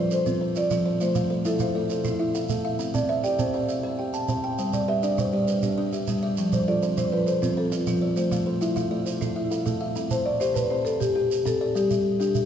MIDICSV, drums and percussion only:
0, 0, Header, 1, 2, 480
1, 0, Start_track
1, 0, Key_signature, 0, "major"
1, 0, Tempo, 298211
1, 1622, Time_signature, 12, 3, 24, 8
1, 20046, End_track
2, 0, Start_track
2, 0, Title_t, "Shekere"
2, 178, Note_on_c, 9, 82, 54
2, 339, Note_off_c, 9, 82, 0
2, 425, Note_on_c, 9, 82, 62
2, 586, Note_off_c, 9, 82, 0
2, 897, Note_on_c, 9, 82, 56
2, 1058, Note_off_c, 9, 82, 0
2, 1136, Note_on_c, 9, 82, 72
2, 1297, Note_off_c, 9, 82, 0
2, 1618, Note_on_c, 9, 82, 54
2, 1779, Note_off_c, 9, 82, 0
2, 1851, Note_on_c, 9, 82, 76
2, 2012, Note_off_c, 9, 82, 0
2, 2334, Note_on_c, 9, 82, 55
2, 2495, Note_off_c, 9, 82, 0
2, 2565, Note_on_c, 9, 82, 78
2, 2726, Note_off_c, 9, 82, 0
2, 3052, Note_on_c, 9, 82, 60
2, 3213, Note_off_c, 9, 82, 0
2, 3289, Note_on_c, 9, 82, 72
2, 3450, Note_off_c, 9, 82, 0
2, 3776, Note_on_c, 9, 82, 68
2, 3937, Note_off_c, 9, 82, 0
2, 4010, Note_on_c, 9, 82, 84
2, 4171, Note_off_c, 9, 82, 0
2, 4496, Note_on_c, 9, 82, 71
2, 4657, Note_off_c, 9, 82, 0
2, 4740, Note_on_c, 9, 82, 81
2, 4901, Note_off_c, 9, 82, 0
2, 5215, Note_on_c, 9, 82, 57
2, 5376, Note_off_c, 9, 82, 0
2, 5454, Note_on_c, 9, 82, 84
2, 5615, Note_off_c, 9, 82, 0
2, 5937, Note_on_c, 9, 82, 61
2, 6098, Note_off_c, 9, 82, 0
2, 6657, Note_on_c, 9, 82, 57
2, 6818, Note_off_c, 9, 82, 0
2, 6893, Note_on_c, 9, 82, 70
2, 7054, Note_off_c, 9, 82, 0
2, 7382, Note_on_c, 9, 82, 54
2, 7543, Note_off_c, 9, 82, 0
2, 7615, Note_on_c, 9, 82, 73
2, 7775, Note_off_c, 9, 82, 0
2, 8097, Note_on_c, 9, 82, 54
2, 8258, Note_off_c, 9, 82, 0
2, 8338, Note_on_c, 9, 82, 72
2, 8499, Note_off_c, 9, 82, 0
2, 8816, Note_on_c, 9, 82, 59
2, 8977, Note_off_c, 9, 82, 0
2, 9054, Note_on_c, 9, 82, 71
2, 9215, Note_off_c, 9, 82, 0
2, 9544, Note_on_c, 9, 82, 57
2, 9705, Note_off_c, 9, 82, 0
2, 9774, Note_on_c, 9, 82, 74
2, 9935, Note_off_c, 9, 82, 0
2, 10257, Note_on_c, 9, 82, 59
2, 10418, Note_off_c, 9, 82, 0
2, 10501, Note_on_c, 9, 82, 78
2, 10662, Note_off_c, 9, 82, 0
2, 10983, Note_on_c, 9, 82, 56
2, 11144, Note_off_c, 9, 82, 0
2, 11225, Note_on_c, 9, 82, 83
2, 11386, Note_off_c, 9, 82, 0
2, 11705, Note_on_c, 9, 82, 58
2, 11866, Note_off_c, 9, 82, 0
2, 11954, Note_on_c, 9, 82, 71
2, 12115, Note_off_c, 9, 82, 0
2, 12428, Note_on_c, 9, 82, 61
2, 12589, Note_off_c, 9, 82, 0
2, 12662, Note_on_c, 9, 82, 78
2, 12823, Note_off_c, 9, 82, 0
2, 13146, Note_on_c, 9, 82, 61
2, 13307, Note_off_c, 9, 82, 0
2, 13386, Note_on_c, 9, 82, 78
2, 13547, Note_off_c, 9, 82, 0
2, 13868, Note_on_c, 9, 82, 57
2, 14029, Note_off_c, 9, 82, 0
2, 14109, Note_on_c, 9, 82, 72
2, 14270, Note_off_c, 9, 82, 0
2, 14588, Note_on_c, 9, 82, 55
2, 14749, Note_off_c, 9, 82, 0
2, 14834, Note_on_c, 9, 82, 68
2, 14995, Note_off_c, 9, 82, 0
2, 15316, Note_on_c, 9, 82, 52
2, 15477, Note_off_c, 9, 82, 0
2, 15552, Note_on_c, 9, 82, 71
2, 15713, Note_off_c, 9, 82, 0
2, 16032, Note_on_c, 9, 82, 65
2, 16193, Note_off_c, 9, 82, 0
2, 16266, Note_on_c, 9, 82, 86
2, 16427, Note_off_c, 9, 82, 0
2, 16757, Note_on_c, 9, 82, 60
2, 16918, Note_off_c, 9, 82, 0
2, 16998, Note_on_c, 9, 82, 81
2, 17159, Note_off_c, 9, 82, 0
2, 17482, Note_on_c, 9, 82, 58
2, 17643, Note_off_c, 9, 82, 0
2, 17724, Note_on_c, 9, 82, 77
2, 17885, Note_off_c, 9, 82, 0
2, 18209, Note_on_c, 9, 82, 59
2, 18370, Note_off_c, 9, 82, 0
2, 18448, Note_on_c, 9, 82, 75
2, 18609, Note_off_c, 9, 82, 0
2, 18931, Note_on_c, 9, 82, 56
2, 19092, Note_off_c, 9, 82, 0
2, 19161, Note_on_c, 9, 82, 73
2, 19322, Note_off_c, 9, 82, 0
2, 19648, Note_on_c, 9, 82, 53
2, 19809, Note_off_c, 9, 82, 0
2, 19875, Note_on_c, 9, 82, 74
2, 20035, Note_off_c, 9, 82, 0
2, 20046, End_track
0, 0, End_of_file